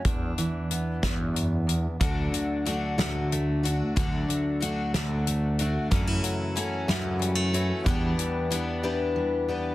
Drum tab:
HH |xxxxxx|xxxxxx|xxxxxx|xxxxxx|
SD |---o--|---o--|---o--|---o--|
BD |o--o--|o-----|o-----|o-----|

HH |xxx---|
SD |------|
BD |o-----|